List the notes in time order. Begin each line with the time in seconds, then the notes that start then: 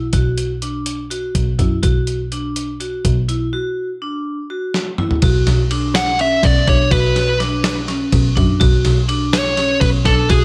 0.13 B1 F#4, kick, closed hi-hat
0.38 closed hi-hat
0.62 D4, closed hi-hat
0.86 closed hi-hat
1.11 F#4, closed hi-hat
1.35 B1, kick, closed hi-hat
1.59 F#2 E4, kick, closed hi-hat
1.83 B1 F#4, kick, closed hi-hat
2.07 closed hi-hat
2.32 D4, closed hi-hat
2.56 closed hi-hat
2.80 F#4, closed hi-hat
3.05 B1, kick, closed hi-hat
3.29 E4, closed hi-hat
3.53 F#4
4.02 D4
4.50 F#4
4.74 snare
4.98 E4, mid tom
5.11 floor tom
5.22 B1 F#4, kick, ride
5.47 B1, snare, ride
5.71 D4, ride
5.95 F#5, snare, ride
6.19 C#4 E5, ride
6.43 B1 D5, kick, ride
6.67 B1 D4 C#5, kick, ride
6.91 B1 F#4 B4, kick, ride
7.16 snare, ride
7.40 D4, snare, ride
7.64 snare, ride
7.88 C#4, snare, ride
8.12 B1, kick, ride
8.36 F#2 D4, kick, ride
8.60 B1 F#4, kick, ride
8.85 B1, snare, ride
9.08 D4, ride
9.33 C#5, snare, ride
9.57 C#4, snare, ride
9.81 B1 B4, kick, ride
10.05 B1 D4 A4, kick, snare, ride
10.29 B1 F#4 G#4, kick, ride